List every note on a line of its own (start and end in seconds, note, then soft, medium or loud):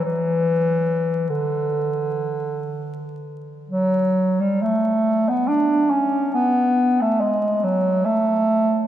0.05 1.31 E3 medium
1.29 3.12 D3 soft
3.70 4.42 F#3 medium
4.40 4.63 G3 medium
4.62 5.30 A3 medium
5.29 5.49 B3 medium
5.48 5.92 D4 medium
5.90 6.33 C#4 medium
6.34 7.03 B3 medium
7.01 7.22 A3 medium
7.20 7.65 G#3 medium
7.64 8.07 F#3 medium
8.05 8.87 A3 medium